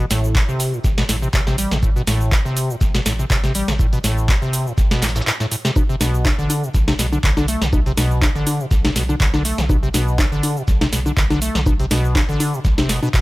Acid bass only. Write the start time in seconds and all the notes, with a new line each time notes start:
0.11 A2
0.35 C3
0.48 C3
0.73 A2
0.84 A1
0.98 B2
1.09 A2
1.22 C3
1.34 C3
1.47 C3
1.58 G3
1.72 A2
1.83 A2
1.96 B2
2.07 A2
2.32 C3
2.45 C3
2.70 A2
2.81 A1
2.94 B2
3.06 A2
3.19 C3
3.30 C3
3.44 C3
3.55 G3
3.68 A2
3.79 A2
3.93 B2
4.04 A2
4.29 C3
4.42 C3
4.66 A2
4.78 A1
4.91 B2
5.02 A2
5.16 A2
5.27 A2
5.40 A2
5.51 A2
5.65 C3
5.76 B2
5.89 C3
6.01 B2
6.25 D3
6.38 D3
6.63 B2
6.74 B1
6.88 C3
6.99 B2
7.12 D3
7.24 D3
7.37 D3
7.48 A3
7.62 B2
7.73 B2
7.86 C3
7.97 B2
8.22 D3
8.35 D3
8.60 B2
8.71 B1
8.84 C3
8.96 B2
9.09 D3
9.20 D3
9.34 D3
9.45 A3
9.58 B2
9.69 B2
9.83 C3
9.94 B2
10.19 D3
10.32 D3
10.57 B2
10.68 B1
10.81 C3
10.92 B2
11.06 D3
11.17 D3
11.30 D3
11.42 A3
11.55 B2
11.66 B2
11.80 C3
11.91 B2
12.15 D3
12.29 D3
12.53 B2
12.65 B1
12.78 C3
12.89 B2
13.03 B2
13.14 B2